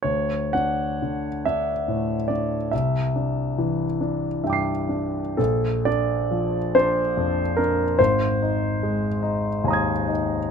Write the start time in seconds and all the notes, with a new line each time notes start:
0.03 D2 C#5
0.53 D4 F#5
1.02 D3
1.45 D4 E5
1.88 A2
2.28 D4 D5
2.71 C2 E5
3.16 D4
3.58 E3
4.01 D4
4.44 G2 E5 G5
4.50 D6 C7
4.89 D4
5.37 A#1 A4
5.85 D4 D5
6.31 F3
6.75 D4 C5
7.17 F2
7.57 D4 A#4
7.99 G#1 C5
8.42 D#4
8.83 G#3
9.22 D#4
9.64 D#2 G#5
9.68 A#5 D#6
9.73 G#6
10.08 D#4